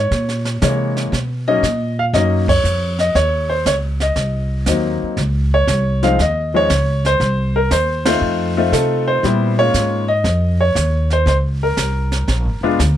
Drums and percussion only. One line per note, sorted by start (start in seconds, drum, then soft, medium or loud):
0.11 brush sweep medium
0.11 kick soft
0.11 snare soft
0.29 snare soft
0.45 snare soft
0.62 kick soft
0.62 snare medium
0.62 hi-hat pedal medium
0.97 snare soft
1.13 brush sweep soft
1.13 kick soft
1.13 snare soft
1.63 kick soft
1.63 snare medium
1.63 hi-hat pedal medium
2.14 brush sweep medium
2.14 kick soft
2.14 snare soft
2.48 kick medium
2.48 ride medium
2.65 hi-hat pedal medium
2.99 snare soft
3.15 brush sweep soft
3.15 kick soft
3.15 snare soft
3.66 kick soft
3.66 snare medium
3.66 hi-hat pedal medium
4.00 snare soft
4.16 brush sweep soft
4.16 kick soft
4.16 snare soft
4.66 kick soft
4.66 snare medium
4.66 hi-hat pedal medium
5.17 brush sweep soft
5.17 kick soft
5.17 snare soft
5.68 kick soft
5.68 snare medium
5.68 hi-hat pedal medium
6.03 snare soft
6.19 brush sweep soft
6.19 kick soft
6.19 snare soft
6.70 kick soft
6.70 snare medium
6.70 hi-hat pedal medium
7.05 snare soft
7.20 brush sweep soft
7.20 kick soft
7.20 snare soft
7.71 kick soft
7.71 snare medium
7.71 hi-hat pedal medium
8.05 snare medium
8.05 ride medium
8.22 brush sweep soft
8.73 kick soft
8.73 snare medium
8.73 hi-hat pedal medium
9.23 brush sweep soft
9.23 kick soft
9.23 snare soft
9.74 kick soft
9.74 snare medium
9.74 hi-hat pedal medium
10.24 brush sweep soft
10.24 kick soft
10.24 snare soft
10.76 kick soft
10.76 snare medium
10.76 hi-hat pedal medium
11.10 snare soft
11.26 brush sweep soft
11.26 kick soft
11.26 snare soft
11.77 kick soft
11.77 snare medium
11.77 hi-hat pedal medium
12.12 snare soft
12.28 brush sweep soft
12.28 kick soft
12.28 snare soft
12.79 kick soft
12.79 snare medium
12.79 hi-hat pedal medium